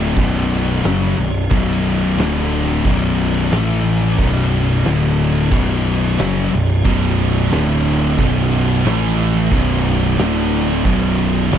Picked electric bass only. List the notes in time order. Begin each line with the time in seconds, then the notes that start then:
Already playing: D1
0.16 B0
0.84 F#1
1.17 B0
1.51 B0
2.17 D1
2.85 B0
3.52 A1
4.19 B0
4.85 D1
5.52 B0
6.20 F#1
6.52 B0
6.86 B0
7.53 D1
8.19 B0
8.85 A1
9.52 B0
10.18 D1
10.85 B0
11.52 F#1